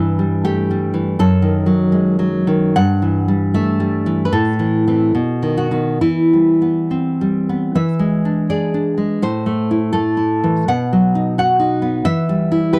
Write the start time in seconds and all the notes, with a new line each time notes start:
Already playing: G2 E3 E5
0.19 G3
0.44 A3 G4
0.71 G3
0.94 E3
1.19 F#2 A4
1.42 D#3
1.66 F#3
1.92 G#3
2.19 F#3
2.47 D#3
2.76 G2 F#5
3.02 E3
3.28 G3
3.54 A3 E5
3.80 G3
4.06 E3
4.25 B4
4.32 A2 A4
4.59 E3
4.87 E3 C4
5.15 B2
5.43 D#3
5.57 F#4
5.71 D#3 B3
6.01 E3 E4
6.33 G3
6.62 B3
6.91 C4
7.21 G3
7.49 B3
7.75 E3 E5
7.99 G#3
8.25 D4
8.50 G#4 D5
8.74 D4
8.98 G#3
9.22 A2 C5
9.46 A3
9.71 E4
9.93 A3 A4
10.17 E4
10.44 E3
10.68 B2 F#5
10.93 F#3
11.15 D#4
11.38 F#4 F#5
11.59 D#4
11.82 B3
12.05 E3 E5
12.29 G3
12.52 E4
12.73 G4 B4